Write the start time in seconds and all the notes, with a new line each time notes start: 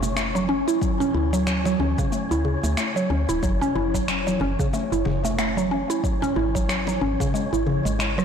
Already playing: F#1 C#4 C#5
0.03 A3, low conga, cabasa
0.16 A3, finger snap, cabasa
0.35 F#3, high conga, cabasa
0.49 C#4
0.68 E4, cabasa
0.81 F#3, kick, cabasa
1.00 C#4, muted conga, low conga, cabasa
1.14 D2 E4
1.33 F#3, cabasa
1.47 F#3, finger snap, cabasa
1.65 F#3, muted conga, cabasa
1.80 D2 C#4, high conga
1.98 C#3, kick, low conga, cabasa
2.12 A3, cabasa
2.31 D2 E4, cabasa
2.45 C#3
2.63 D2 A3, cabasa
2.77 A3, finger snap, cabasa
2.96 F#3, cabasa
3.10 D2 C#4
3.29 D1 E4, cabasa
3.43 F#1 F#3, kick, cabasa
3.61 C#4, muted conga, low conga, cabasa
3.75 F#1 E4, high conga
3.94 F#3, kick, muted conga, cabasa
4.08 F#3, finger snap, cabasa
4.27 F#3, muted conga, cabasa
4.40 F#1 C#4, high conga
4.59 C#3, kick, cabasa
4.73 A3, muted conga, cabasa
4.92 F#1 E4, cabasa
5.05 F#1 C#3, muted conga
5.24 A3, low conga, cabasa
5.39 A3, finger snap, cabasa
5.57 F#3, high conga, cabasa
5.71 C#4
5.90 E4, cabasa
6.04 F#3, kick, cabasa
6.22 C#4, muted conga, low conga, cabasa
6.36 G#1 E4, high conga
6.55 F#3, kick, muted conga, cabasa
6.69 F#3, finger snap, cabasa
6.87 F#3, muted conga, cabasa
7.01 G#1 C#4, high conga
7.20 C#3, kick, low conga, cabasa
7.34 G#3, cabasa
7.53 G#1 E4, cabasa
7.66 C#3, high conga
7.85 G#1 G#3, cabasa
7.99 G#3, finger snap, cabasa
8.18 D1 F#3, cross-stick, cabasa